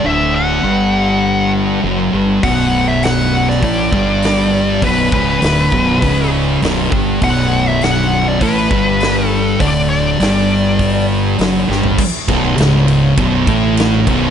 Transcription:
0.04 D1 D2 D3 E5
0.36 F#5
0.63 G1 G2 G3
1.83 F#1 F#2 F#3
2.13 G1 G2 G3
2.43 B0 B1 B2 F#5, kick, open hi-hat
2.88 E5
3.03 F#5, snare, open hi-hat
3.49 D5, snare
3.63 A1 A2 A3 D5, kick, open hi-hat
3.92 G1 G2 G3, kick
4.22 snare, open hi-hat
4.82 B0 B1 B2 B4, kick, open hi-hat
5.12 C#1 C#2 C#3 B4, kick
5.42 D1 D2 D3, snare, open hi-hat
5.72 B0 B1 B2, kick
6.02 C#1 C#2 C#3, kick, open hi-hat
6.62 B0 B1 B2, snare, open hi-hat
6.92 G1 G2 G3, kick
7.22 B0 B1 B2 F#5, kick, open hi-hat
7.67 E5
7.81 F#5, snare, open hi-hat
8.28 D5
8.41 A1 A2 A3 B4, kick, open hi-hat
8.71 G1 G2 G3, kick
9.00 snare, open hi-hat
9.27 A4
9.60 D1 D2 D3 D5, kick, open hi-hat
9.90 D5
10.20 G1 G2 G3, snare, open hi-hat
10.79 kick, open hi-hat
11.39 F#1 F#2 F#3, snare, open hi-hat
11.69 G1 G2 G3, snare
11.83 floor tom
11.98 kick, crash
12.28 B0 B1 B2, kick, ride
12.58 C#1 C#2 C#3, snare, ride
12.88 ride
13.17 B0 B1 B2, kick, ride
13.47 A1 A2 A3, kick, ride
13.77 snare, ride
14.07 B0 B1 B2, kick, ride

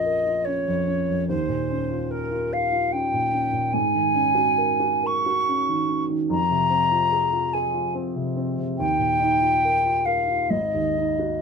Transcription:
Already playing: A#1 F2 C#4 F4 A#4 D#5
0.06 A#4
0.26 F4
0.45 C#4 C#5
0.68 F2
0.88 C#4
1.09 F2
1.28 D#2 C5
1.48 A#2
1.71 C#4
1.91 F4
2.11 A#4
2.32 F4
2.53 A#4 F5
2.72 F4
2.92 C#4 G5
3.13 A#2
3.33 C#4
3.53 A#2
3.73 G#2 G#5
3.95 D#3
4.15 C#4
4.35 F#4
4.58 A#4
4.80 F#4
5.03 A#4 C#6
5.26 F#4
5.49 C#4
5.68 D#3
5.89 C#4
6.10 D#3
6.30 F2 A#5
6.51 C3
6.70 C4
6.92 F4
7.12 G#4
7.33 F4
7.53 G#4 G#5
7.74 F4
7.95 C4
8.16 C3
8.36 C4
8.59 C3
8.77 D#2 G5
8.98 A#2
9.20 D#4
9.41 F4
9.65 A#4
9.86 F4
10.05 A#4 F5
10.28 F4
10.50 G#1 D#5
10.74 D#2
10.97 D#4
11.19 F#4

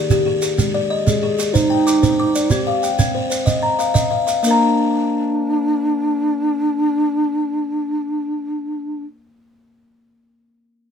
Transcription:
Already playing: G#4 D5
0.10 G4, shekere
0.26 G#4
0.42 G#4, shekere
0.58 G#3, shekere
0.74 D5
0.90 D#5
1.06 G#3 G#4, shekere
1.23 G#4
1.39 G#4, shekere
1.53 D#4 C5, shekere
1.70 G5
1.87 D6, shekere
2.03 C5, shekere
2.20 D6
2.35 D5, shekere
2.50 C4 G4, shekere
2.67 F5
2.83 G5, shekere
2.99 C4, shekere
3.15 C5
3.30 C5, shekere
3.46 D#5, shekere
3.63 A#5
3.79 F5, shekere
3.94 D#5, shekere
4.11 F5
4.27 F5, shekere
4.43 A#3 D4, shekere
4.47 A#4 A#5

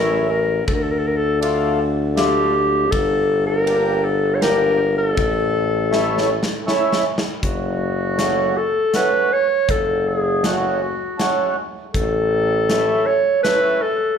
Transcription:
Already playing: A1 E3 C#4 E4 A#4
0.30 A#4
0.67 D2 A4, kick, ride
0.74 A#4
0.83 A4
0.91 A#4
0.99 A4
1.07 A#4
1.17 A4
1.41 A3 D4 F4 A4, ride
2.15 A3 D4 F4 G4, snare, ride
2.91 G1 A4, kick, ride
3.46 A#4
3.65 A#3 D4 G4, ride
4.04 A4
4.35 C#5
4.41 A#3 D4 G4 A#4, snare, ride
4.98 A4
5.17 A1, kick, ride
5.90 A3 C#4 E4, snare
6.18 snare
6.43 snare
6.66 A3 C#4 E4, snare
6.93 snare
7.18 snare
7.43 F#1 F#4, kick, closed hi-hat
8.17 A3 C#4 F#4, snare, closed hi-hat
8.57 A4
8.93 A3 C#4 F#4 B4, snare, closed hi-hat
9.33 C#5
9.69 F#1 A4, kick, closed hi-hat
10.08 G#4
10.43 A3 C#4 F#4, snare, closed hi-hat
10.47 F#4
11.17 A3 C#4 F#4, snare, closed hi-hat
11.94 A1 A4, kick, closed hi-hat
12.68 A3 C#4 E4, snare, closed hi-hat
13.06 C#5
13.43 A3 C#4 E4 B4, snare, closed hi-hat
13.82 A4

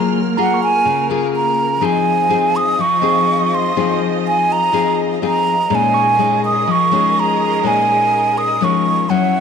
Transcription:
Already playing: F#3 A#3 F4 G#4 A#4 A#5 F6
0.37 A#3 F4 G#4 F#5 A#5
0.54 C#6
0.63 G#5
0.85 C#3
1.10 A#3 F4 G#4
1.36 A#5
1.81 F3 C4 D#4 F4 G#4 D#5 G#5
2.29 C4 D#4 G#4
2.56 D#6
2.79 F3 C#6
3.02 C4 D#4 G#4
3.54 C6
3.76 F3 C4 D#4 G#4
4.27 G#5
4.52 A#5
4.73 F3 C4 D#4 G#4
5.22 C4 D#4 G#4
5.26 A#5
5.70 A#2 G#3 C#4 D#4 G#4 A#4 D#5
5.75 G#5
5.94 C#6
6.18 G#3 C#4 D#4
6.45 D#6
6.67 F3 C#6
6.91 G#3 C#4 D#4
7.20 A#5
7.63 A#2 G#3 C#4 D#4 G#5
8.38 D#6
8.61 F3 G#3 C#4 D#4 C#6
9.09 F#3 C#4 E4 C#5 E5 F#5

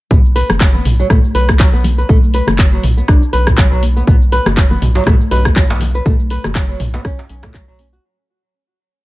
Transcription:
0.11 B1 B3, kick, mid tom, high conga, cabasa
0.25 cabasa
0.36 B4, open hi-hat
0.49 F#1, cross-stick, high conga, low conga, cabasa
0.61 F#3, kick, clap, cabasa
0.74 B3, high conga, low conga, cabasa
0.85 B1, mid tom, open hi-hat
1.00 F#3, cabasa
1.10 B1 A3, kick, cross-stick, mid tom, high conga, cabasa
1.24 cabasa
1.34 B1 B4, open hi-hat
1.49 kick, cross-stick, high conga, cabasa
1.60 F#3, kick, clap, cabasa
1.73 B1 B3, cabasa
1.84 open hi-hat, high conga, low conga
1.98 B4, cabasa
2.09 B1 A3, kick, mid tom, high conga, cabasa
2.23 cabasa
2.34 B4, open hi-hat
2.47 F#1, cross-stick, high conga, low conga, cabasa
2.59 F#3, kick, clap, cabasa
2.73 F#3, high conga, cabasa
2.83 B1, mid tom, open hi-hat
2.97 B3, cabasa
3.08 B1 D4, kick, cross-stick, cabasa
3.23 cabasa
3.33 B1 B4, open hi-hat
3.47 kick, cross-stick, mid tom, cabasa
3.58 F#3, kick, clap, cabasa
3.72 B1 F#3, cabasa
3.83 open hi-hat, high conga
3.97 B3, cabasa
4.07 B1 B3, kick, mid tom, high conga, cabasa
4.22 cabasa
4.32 B4, open hi-hat
4.46 F#1, cross-stick, high conga, djembe tone, low conga, cabasa
4.57 F#3, kick, clap, cabasa
4.71 B3, high conga, low conga, cabasa
4.82 B1, mid tom, open hi-hat, djembe tone
4.95 F#3, djembe slap, cabasa
5.06 B1 A3, kick, cross-stick, mid tom, high conga, djembe tone, cabasa
5.21 cabasa
5.31 B1 B4, open hi-hat, djembe tone
5.45 kick, cross-stick, high conga, cabasa
5.56 F#3, kick, clap, djembe tone, cabasa
5.70 B1 B3, djembe slap, cabasa
5.80 open hi-hat, high conga, low conga
5.95 B4, cabasa
6.05 B1 A3, kick, mid tom, high conga, cabasa
6.20 cabasa
6.30 B4, open hi-hat
6.44 F#1, cross-stick, high conga, djembe tone, low conga, cabasa
6.55 F#3, kick, clap, cabasa
6.69 F#3, high conga, cabasa
6.80 B1, mid tom, open hi-hat, djembe tone
6.94 B3, djembe slap, cabasa
7.05 B1 C#4, kick, cross-stick, cabasa
7.19 djembe slap, cabasa
7.29 B1 C#4, open hi-hat
7.43 A3, kick, cross-stick, mid tom, djembe slap, djembe tone, cabasa
7.54 F#3, kick, clap, cabasa
7.68 B1 F#3, cabasa
7.79 C#4, open hi-hat, high conga
7.93 F#4, cabasa

